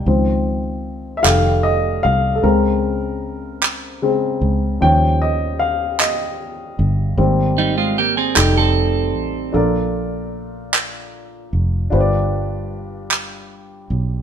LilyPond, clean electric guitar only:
\new Staff \with { instrumentName = "Clean electric guitar" } { \time 6/8 \key f \minor \tempo 4. = 51 r2. | r2. | r2. | r8 <g ees'>16 <aes f'>16 <bes g'>16 <c' aes'>16 g'16 <c' a'>4~ <c' a'>16 |
\key bes \major r2. | r2. | }